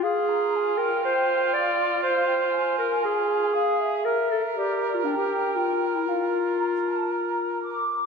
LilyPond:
<<
  \new Staff \with { instrumentName = "Flute section" } { \time 4/4 \key bes \lydian \tempo 4 = 119 f''8 bes''8 aes''8 g''4. f''4 | f''8 g''8 aes''2 f''8 e''8~ | e''4 d''4 g''2 | f''4 bes''8 a''8 bes''4 d'''4 | }
  \new Staff \with { instrumentName = "Clarinet" } { \time 4/4 \key bes \lydian aes'4. bes'8 c''4 d''4 | c''4. bes'8 aes'2 | bes'8 a'8 g'8. f'16 d'16 g'8. f'8. e'16 | f'2.~ f'8 r8 | }
  \new Staff \with { instrumentName = "Cor anglais" } { \time 4/4 \key bes \lydian f'1~ | f'2. aes'4 | bes'1~ | bes'2.~ bes'8 r8 | }
>>